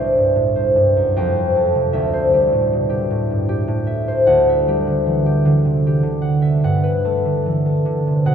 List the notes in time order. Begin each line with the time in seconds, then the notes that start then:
Already playing: C2 D4 C5 D5 E5
0.00 G3
0.17 G2
0.36 A2
0.56 C5
0.76 G2
0.96 F#2
1.16 F2 G5
1.37 C5
1.56 A4
1.75 C3
1.93 D2 E5
2.13 C5
2.33 G3 G4
2.52 A2
2.73 B2
2.89 G4
3.10 A2
3.31 G2
3.49 G4
3.68 A2
3.87 E5
4.08 C5
4.27 D2 F#5
4.49 E5
4.68 G3 G4
4.87 D3
5.06 E3
5.26 G4
5.45 D3
5.65 C3
5.86 G4
6.03 D3
6.22 F#5
6.42 E5
6.64 G2 F#5
6.83 B4
7.05 A3 A4
7.25 D3
7.46 E3
7.66 A4
7.85 D3
8.07 C3
8.26 B2 F#5